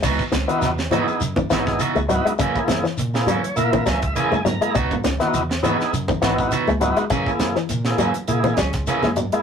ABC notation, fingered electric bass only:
X:1
M:4/4
L:1/16
Q:"Swing 16ths" 1/4=102
K:C#dor
V:1 name="Fingered electric bass" clef=bass
C,, z C,, z E,,2 z2 F,,2 G,,, G,,, z C,,2 z | F,, z F,, z A,,2 z2 A,,2 C,, C,, z F,,2 z | C,, z C,, z E,,2 z2 F,,2 G,,, G,,, z C,,2 z | F,, z F,, z A,,2 z2 A,,2 C,, C,, z F,,2 z |]